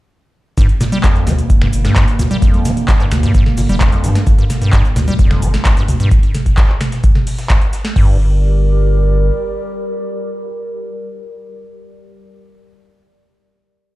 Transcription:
0.58 sub bass G1, acid bass G2, ambient pad D3 G3 A#3, kick, closed hi-hat, cabasa, shaker
0.69 closed hi-hat
0.81 acid bass A#2, snare, open hi-hat, mid tom, cabasa, shaker
0.92 acid bass G3, closed hi-hat, cabasa
1.04 acid bass F2, kick, snare, clap, closed hi-hat, cabasa, shaker
1.15 cabasa
1.27 sub bass D2, acid bass G3, snare, open hi-hat, mid tom, cabasa, shaker
1.39 closed hi-hat, cabasa
1.50 sub bass D1, kick, closed hi-hat, cabasa, shaker
1.62 acid bass G2, finger snap, snare, mid tom
1.73 sub bass G1, open hi-hat, cabasa, shaker
1.85 acid bass G2, snare, closed hi-hat, cabasa
1.96 sub bass G1, finger snap, kick, snare, clap, closed hi-hat, cabasa, shaker
2.08 closed hi-hat, cabasa
2.19 sub bass D2, acid bass A#2, snare, open hi-hat, mid tom, cabasa, shaker
2.31 acid bass G3, closed hi-hat, cabasa
2.42 acid bass F2, kick, closed hi-hat, cabasa, shaker
2.54 closed hi-hat
2.65 acid bass G3, snare, open hi-hat, mid tom, cabasa, shaker
2.77 closed hi-hat, cabasa
2.88 kick, snare, clap, closed hi-hat, cabasa, shaker
3.00 acid bass G2, clap, cabasa
3.11 sub bass D2, finger snap, snare, open hi-hat, mid tom, cabasa, shaker
3.23 acid bass G2, snare, closed hi-hat, cabasa
3.35 kick, closed hi-hat, cabasa, shaker
3.46 snare, mid tom
3.57 sub bass G1, acid bass A#2, open hi-hat, cabasa
3.69 sub bass F1, acid bass G3, snare, closed hi-hat, cabasa
3.81 acid bass F2, finger snap, kick, snare, clap, closed hi-hat, cabasa, shaker
3.92 closed hi-hat, cabasa
4.04 sub bass G2, acid bass G3, snare, open hi-hat, cabasa, shaker
4.15 snare, closed hi-hat, cabasa
4.27 sub bass G1, kick, closed hi-hat, cabasa, shaker
4.38 acid bass G2, closed hi-hat
4.50 snare, open hi-hat, mid tom, cabasa, shaker
4.62 acid bass G2, closed hi-hat, cabasa
4.73 acid bass G2, kick, snare, clap, closed hi-hat, cabasa, shaker
4.85 cabasa
4.96 sub bass D2, acid bass A#2, snare, open hi-hat, mid tom, cabasa, shaker
5.07 acid bass G3, closed hi-hat, cabasa
5.19 sub bass D1, acid bass F2, kick, closed hi-hat, cabasa, shaker
5.31 finger snap, snare, mid tom
5.42 sub bass G1, acid bass G3, open hi-hat, cabasa, shaker
5.54 snare, closed hi-hat, cabasa
5.65 sub bass G1, finger snap, kick, snare, clap, closed hi-hat, cabasa, shaker
5.77 acid bass G2, closed hi-hat, cabasa
5.88 sub bass D2, snare, open hi-hat, mid tom, cabasa, shaker
6.00 acid bass G2, closed hi-hat, cabasa
6.11 kick, closed hi-hat, shaker
6.23 closed hi-hat
6.35 snare, open hi-hat, mid tom, shaker
6.46 kick, closed hi-hat
6.58 kick, snare, clap, closed hi-hat, shaker
6.69 clap
6.81 finger snap, snare, open hi-hat, mid tom, shaker
6.92 snare, closed hi-hat
7.04 kick, closed hi-hat, shaker
7.15 snare, mid tom
7.27 open hi-hat
7.38 snare, closed hi-hat
7.50 finger snap, kick, snare, clap, closed hi-hat, shaker
7.62 closed hi-hat
7.73 snare, open hi-hat, shaker
7.85 snare, closed hi-hat
7.96 sub bass G1, acid bass G2, ambient pad G3 G4 A#4 D5, kick, crash

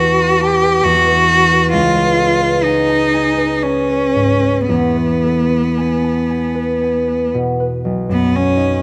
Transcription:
Already playing: harp E2 B4 A5, cello F#4
0.18 harp B5
0.40 cello G4, harp A5
0.63 harp B4
0.84 harp E2, cello F#4
1.07 harp B4
1.28 harp A#4
1.51 harp B4
1.73 harp C#2, cello F4
1.95 harp B4
2.16 harp A4
2.41 harp B4
2.64 cello D#4, harp G#5
2.89 harp A5
3.13 harp G#5
3.37 harp B4
3.63 cello C#4, harp G#5
3.89 harp B4
4.15 harp G#2
4.41 harp B4
4.69 harp E2, cello B3
4.97 harp B4
5.24 harp A4
5.50 harp B4
5.77 harp G#5
6.03 harp A5
6.29 harp G#5
6.55 harp B4
6.82 harp G#5
7.08 harp B4
7.34 harp B2
7.60 harp B4
7.85 harp B1
8.09 harp F#2, cello B3
8.32 harp C#4, cello C#4
8.56 harp D#4

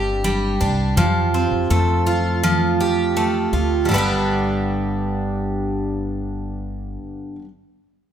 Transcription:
Already playing: upright bass G1, twelve-string acoustic guitar G2 G3 C4 D4 G4
0.24 twelve-string acoustic guitar G3
0.61 upright bass C2, twelve-string acoustic guitar D4
0.97 upright bass F2, twelve-string acoustic guitar F3
1.34 twelve-string acoustic guitar C4
1.52 upright bass F2
1.70 upright bass F2, twelve-string acoustic guitar A3
2.06 twelve-string acoustic guitar F4
2.43 twelve-string acoustic guitar F3
2.81 twelve-string acoustic guitar G4
3.17 twelve-string acoustic guitar A3
3.53 upright bass D2, twelve-string acoustic guitar F4
3.85 twelve-string acoustic guitar G2 D3
3.89 upright bass G1, twelve-string acoustic guitar G3
3.94 twelve-string acoustic guitar B3 D4
3.98 twelve-string acoustic guitar G4

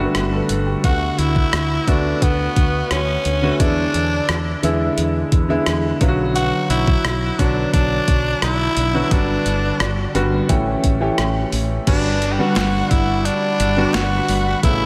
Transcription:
Already playing: grand piano D3 G3 A3 B3
0.00 grand piano F#4
0.04 grand piano B3
0.15 fretless electric bass G1, grand piano B4, cross-stick, closed hi-hat
0.32 grand piano A4
0.49 fretless electric bass G1, closed hi-hat
0.67 grand piano G4
0.83 fretless electric bass D2, grand piano D3 A3 B3 F#4, tenor saxophone F#4, kick, closed hi-hat
1.18 fretless electric bass D2, tenor saxophone E4, closed hi-hat
1.36 kick
1.53 fretless electric bass D2, cross-stick, closed hi-hat
1.87 fretless electric bass D2, grand piano D3 A3 B3 F#4, tenor saxophone D4, kick, closed hi-hat
2.22 fretless electric bass D2, tenor saxophone B3, kick, closed hi-hat
2.56 fretless electric bass D2, kick, closed hi-hat
2.91 fretless electric bass D2, tenor saxophone C#4, cross-stick, closed hi-hat
3.25 fretless electric bass D2, closed hi-hat
3.42 grand piano D3 A3 B3 F#4
3.59 fretless electric bass E2, grand piano D3 G#3 B3 E4, tenor saxophone D4, kick, closed hi-hat
3.94 fretless electric bass E2, closed hi-hat
4.29 fretless electric bass E2, cross-stick, closed hi-hat
4.63 fretless electric bass E2, grand piano D3 G#3 B3 E4, closed hi-hat
4.97 fretless electric bass E2, closed hi-hat
5.32 fretless electric bass E2, kick, closed hi-hat
5.49 grand piano D3 G#3 B3 E4
5.66 fretless electric bass E2, cross-stick, closed hi-hat
6.00 fretless electric bass B1, grand piano D3 F#3 B3 F4, kick, closed hi-hat
6.08 grand piano F#4
6.35 tenor saxophone F#4, closed hi-hat
6.70 fretless electric bass B1, tenor saxophone E4, closed hi-hat
6.87 kick
7.04 fretless electric bass B1, cross-stick, closed hi-hat
7.38 fretless electric bass B1, grand piano D3 F#3 B3 F#4, tenor saxophone D4, kick, closed hi-hat
7.74 fretless electric bass B1, tenor saxophone D4, kick, closed hi-hat
8.08 fretless electric bass B1, kick, closed hi-hat
8.42 fretless electric bass B1, tenor saxophone E4, cross-stick, closed hi-hat
8.77 fretless electric bass B1, closed hi-hat
8.94 grand piano D3 F#3 B3 F#4
9.11 fretless electric bass G1, grand piano D3 G3 B3 F#4, tenor saxophone D4, kick, closed hi-hat
9.46 fretless electric bass G1, closed hi-hat
9.80 fretless electric bass G1, cross-stick, closed hi-hat
10.14 fretless electric bass G1, grand piano D3 G3 B3 F#4, closed hi-hat
10.49 fretless electric bass A1, grand piano E3 A3 C#4 G4, kick, closed hi-hat
10.84 fretless electric bass A1, kick, closed hi-hat
11.00 grand piano E3 A3 C#4 G4
11.18 fretless electric bass A1, cross-stick, closed hi-hat
11.52 fretless electric bass A1, open hi-hat
11.87 fretless electric bass G1, grand piano D3 G3 B3 F#4, analog synth pad G3 D5 F#5 B5, tenor saxophone D4, kick, closed hi-hat, crash
12.22 closed hi-hat
12.32 tenor saxophone G4
12.39 grand piano D3 G3 B3 F#4, tenor saxophone F#4
12.56 fretless electric bass G1, snare, clap, closed hi-hat
12.91 fretless electric bass G1, tenor saxophone E4, kick, closed hi-hat
13.25 tenor saxophone D4, closed hi-hat
13.60 fretless electric bass G1, closed hi-hat
13.77 grand piano D3 G3 B3 F#4
13.94 fretless electric bass G1, tenor saxophone F#4, snare, clap, closed hi-hat
14.28 fretless electric bass G1, open hi-hat
14.63 fretless electric bass A1, grand piano C#3 A3 B3 E4, tenor saxophone E4, analog synth pad A4 C#5 E5, kick, closed hi-hat

